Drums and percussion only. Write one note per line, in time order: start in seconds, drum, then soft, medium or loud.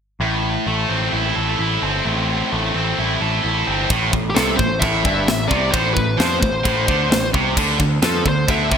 3.90 kick loud
3.90 china medium
4.13 kick medium
4.36 snare loud
4.36 china medium
4.59 kick medium
4.82 kick loud
4.82 china medium
5.05 kick loud
5.28 snare loud
5.28 china medium
5.51 kick loud
5.74 kick loud
5.74 china medium
5.97 kick medium
6.20 snare loud
6.20 china medium
6.43 kick medium
6.65 kick loud
6.65 china medium
6.88 kick loud
7.12 snare loud
7.12 china medium
7.34 kick loud
7.57 kick loud
7.57 crash loud
7.57 china medium
7.80 kick loud
8.02 snare loud
8.02 china medium
8.26 kick medium
8.48 kick loud
8.48 china medium
8.72 kick loud